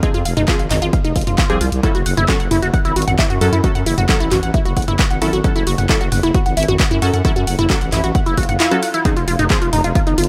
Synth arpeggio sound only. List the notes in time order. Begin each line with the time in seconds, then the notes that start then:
0.03 D#4
0.14 F4
0.25 F5
0.37 D#4
0.48 F4
0.59 F5
0.71 D#4
0.82 F4
0.93 F5
1.05 D#4
1.16 F4
1.27 F4
1.38 F4
1.50 G4
1.61 F4
1.83 E4
1.95 F#4
2.06 F#5
2.17 E4
2.29 F#4
2.40 F#5
2.51 E4
2.63 F#4
2.74 F#5
2.85 E4
2.96 F#4
3.08 F#5
3.19 E4
3.30 F#4
3.41 F#5
3.53 E4
3.64 F#4
3.75 F#5
3.86 E4
3.98 F#4
4.09 F#5
4.20 E4
4.31 F#4
4.43 F#5
4.54 E4
4.65 F#4
4.77 F#5
4.88 E4
4.99 F#4
5.11 F#5
5.22 E4
5.33 F#4
5.44 F#5
5.56 E4
5.67 F#4
5.78 F#5
5.89 E4
6.01 F#4
6.12 F#5
6.23 E4
6.35 F#4
6.46 F#5
6.57 E4
6.68 F#4
6.80 F#5
6.91 E4
7.02 F#4
7.14 F#5
7.25 E4
7.36 F#4
7.47 F#5
7.59 E4
7.70 F#4
7.81 F#5
7.92 E4
8.04 F#4
8.15 F#5
8.26 E4
8.38 F#4
8.49 F#5
8.60 E4
8.71 F#4
8.83 F#5
8.94 E4
9.05 D#4
9.17 F4
9.28 F4
9.39 D#4
9.50 F4
9.62 F4
9.73 D#4
9.84 F4
9.95 F4
10.07 D#4
10.18 F4